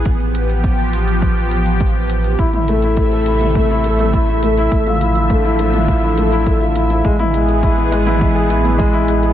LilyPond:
<<
  \new Staff \with { instrumentName = "Grand piano" } { \time 4/4 \key a \minor \tempo 4 = 103 r1 | e'16 e'16 a16 e'16 a16 a'16 e'16 e'16 a16 e'16 a16 a'16 e'16 e'16 a16 e'16 | a16 f'16 e'16 e'16 a16 e'16 a16 f'16 e'16 e'16 a16 e'16 a16 f'16 e'16 e'16 | gis16 e'16 gis16 gis'16 e'16 e'16 gis16 e'16 gis16 gis'16 e'16 e'16 gis16 e'16 gis16 gis'16 | }
  \new Staff \with { instrumentName = "Analog synth pad" } { \time 4/4 \key a \minor << { g'1 | e''1~ | e''1 | gis'1 | } \\ { <f b>1 | <c a>1 | <d f>1 | <e b>1 | } >> }
  \new Staff \with { instrumentName = "Sub bass" } { \clef bass \time 4/4 \key a \minor a,,1 | a,,1 | a,,1 | a,,1 | }
  \new DrumStaff \with { instrumentName = "Drums" } \drummode { \time 4/4 <hh bd>16 hh16 hh16 hh16 <hh bd>16 hh16 hh16 hh16 <hh bd>16 hh16 hh16 hh16 <hh bd>16 hh16 hh16 hh16 | <hh bd>16 <hh toml>16 hh16 hh16 <hh bd>16 hh16 hh16 <hh toml>16 <hh bd>16 hh16 hh16 <hh toml>16 <hh bd>16 hh16 hh16 hh16 | <hh bd>16 <hh toml>16 hh16 hh16 <hh bd>16 hh16 hh16 <hh toml>16 <hh bd>16 hh16 hh16 hh16 <hh bd>16 hh16 hh16 hh16 | <hh bd>16 <hh toml>16 hh16 hh16 <hh bd>16 hh16 hh16 <hh toml>16 <hh bd>16 hh16 hh16 <hh toml>16 <hh bd>16 hh16 hh16 hh16 | }
>>